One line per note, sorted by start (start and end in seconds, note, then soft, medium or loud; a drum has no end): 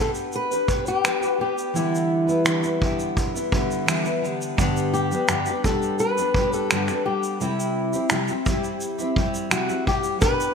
0.00 0.51 B3 medium
0.00 0.51 D4 medium
0.00 0.51 G4 medium
0.00 0.10 A4 medium
0.00 0.50 B4 medium
0.15 shaker soft
0.32 0.88 B4 medium
0.32 shaker soft
0.51 0.68 D4 soft
0.51 0.69 G4 soft
0.51 0.69 B4 soft
0.51 shaker soft
0.68 1.03 B3 medium
0.68 1.03 D4 medium
0.68 1.04 G4 medium
0.68 1.04 B4 medium
0.68 kick medium
0.68 shaker soft
0.86 1.27 G4 medium
0.86 shaker soft
1.04 1.22 B3 medium
1.04 1.22 D4 medium
1.04 1.21 G4 medium
1.04 1.19 B4 medium
1.04 finger snap loud
1.04 shaker medium
1.20 1.38 D4 soft
1.20 1.39 G4 soft
1.20 1.39 B4 soft
1.20 shaker soft
1.27 1.40 F#4 medium
1.38 1.74 B3 medium
1.38 1.74 D4 soft
1.38 1.75 G4 medium
1.38 1.77 G4 medium
1.38 1.75 B4 medium
1.58 shaker soft
1.73 2.27 D3 medium
1.73 2.27 E3 medium
1.73 2.28 G3 medium
1.73 2.27 B3 medium
1.73 2.26 E4 medium
1.73 2.42 E4 medium
1.73 shaker medium
1.95 shaker soft
2.27 2.44 G3 soft
2.27 2.44 B3 soft
2.27 2.44 E4 soft
2.27 shaker soft
2.44 2.63 D3 medium
2.44 2.63 E3 medium
2.44 2.63 G3 medium
2.44 2.62 B3 medium
2.44 2.61 E4 medium
2.44 finger snap medium
2.44 shaker medium
2.62 2.80 G3 soft
2.62 2.81 B3 soft
2.62 2.81 E4 soft
2.62 shaker soft
2.80 3.33 D3 medium
2.80 3.34 G3 medium
2.80 3.34 B3 medium
2.80 3.33 E4 medium
2.80 kick medium
2.99 shaker soft
3.17 kick medium
3.17 shaker soft
3.34 3.51 G3 soft
3.34 3.52 B3 soft
3.34 3.52 E4 medium
3.34 shaker soft
3.52 3.87 D3 medium
3.52 3.87 G3 medium
3.52 3.87 B3 medium
3.52 3.87 E4 medium
3.52 kick medium
3.71 shaker soft
3.86 4.05 D3 medium
3.86 4.04 E3 medium
3.86 4.05 G3 medium
3.86 4.04 B3 medium
3.86 4.02 E4 medium
3.86 finger snap medium
3.86 shaker medium
4.03 4.21 G3 soft
4.03 4.22 B3 soft
4.03 4.22 E4 medium
4.03 shaker soft
4.22 4.56 D3 medium
4.22 4.56 G3 medium
4.22 4.57 B3 medium
4.22 4.58 E4 medium
4.22 shaker soft
4.42 shaker soft
4.57 5.10 G2 medium
4.57 5.10 D3 medium
4.57 5.11 G3 medium
4.57 5.10 B3 medium
4.57 5.10 D4 medium
4.57 5.09 G4 medium
4.57 kick medium
4.57 shaker medium
4.77 shaker soft
4.94 5.65 G4 medium
4.94 shaker soft
5.10 5.28 G3 soft
5.10 5.28 B3 soft
5.10 5.28 D4 soft
5.10 5.28 G4 soft
5.10 shaker soft
5.28 5.46 G2 medium
5.28 5.46 D3 medium
5.28 5.46 G3 medium
5.28 5.46 B3 medium
5.28 5.46 D4 medium
5.28 5.46 G4 medium
5.28 finger snap loud
5.28 shaker medium
5.46 5.65 B3 soft
5.46 5.65 D4 soft
5.46 5.64 G4 soft
5.46 shaker soft
5.50 5.64 G3 soft
5.64 6.17 G3 medium
5.64 6.18 B3 medium
5.64 6.17 D4 medium
5.64 6.16 G4 medium
5.64 6.00 A4 medium
5.64 kick medium
5.64 shaker soft
5.82 shaker soft
5.99 6.53 B4 medium
5.99 shaker medium
6.18 6.35 G3 soft
6.18 6.36 B3 soft
6.18 6.35 D4 soft
6.18 6.35 G4 soft
6.18 shaker soft
6.34 6.70 G3 medium
6.34 6.71 B3 medium
6.34 6.71 D4 medium
6.34 6.72 G4 medium
6.34 kick medium
6.53 7.05 A4 medium
6.53 shaker soft
6.71 6.88 G2 medium
6.71 6.88 D3 medium
6.71 6.88 G3 medium
6.71 6.89 B3 medium
6.71 6.89 D4 medium
6.71 6.88 G4 medium
6.71 finger snap loud
6.71 shaker medium
6.88 7.04 G3 soft
6.88 7.04 B3 soft
6.88 7.05 D4 soft
6.88 7.05 G4 soft
6.88 finger snap soft
6.88 shaker soft
7.05 7.40 G3 medium
7.05 7.40 B3 soft
7.05 7.41 D4 medium
7.05 7.38 G4 medium
7.05 7.41 G4 medium
7.23 shaker soft
7.40 7.93 C3 medium
7.40 7.93 G3 medium
7.40 7.93 C4 medium
7.40 7.93 E4 medium
7.40 8.07 E4 medium
7.40 7.92 G4 medium
7.40 shaker medium
7.60 shaker medium
7.93 8.10 C4 soft
7.93 8.11 E4 soft
7.93 8.11 G4 soft
7.93 shaker soft
8.10 8.28 C3 medium
8.10 8.29 G3 medium
8.10 8.29 C4 medium
8.10 8.29 E4 medium
8.10 8.29 G4 medium
8.10 finger snap medium
8.10 shaker medium
8.28 8.47 C4 soft
8.28 8.47 E4 soft
8.28 8.47 G4 medium
8.28 shaker soft
8.46 9.00 G3 medium
8.46 9.00 C4 medium
8.46 8.99 E4 medium
8.46 kick medium
8.46 shaker soft
8.50 8.97 G4 medium
8.64 shaker soft
8.81 shaker medium
8.98 9.16 C4 soft
8.98 9.17 E4 soft
8.98 9.16 G4 medium
8.98 shaker soft
9.16 9.50 G3 medium
9.16 9.51 C4 medium
9.16 9.50 E4 medium
9.16 9.51 G4 medium
9.16 kick medium
9.34 shaker soft
9.50 9.68 C3 medium
9.50 9.69 G3 medium
9.50 9.69 C4 medium
9.50 9.68 E4 medium
9.50 9.85 F#4 medium
9.50 9.67 G4 medium
9.50 finger snap medium
9.50 shaker medium
9.68 9.85 C4 soft
9.68 9.85 E4 soft
9.68 9.86 G4 soft
9.68 shaker soft
9.85 10.18 G3 soft
9.85 10.20 C4 soft
9.85 10.21 E4 medium
9.85 10.20 G4 medium
9.85 kick medium
10.04 shaker soft
10.19 10.54 B3 medium
10.19 10.54 D4 medium
10.19 10.54 G4 medium
10.19 10.54 B4 medium
10.19 10.54 B4 loud
10.19 kick loud
10.19 shaker medium
10.40 shaker medium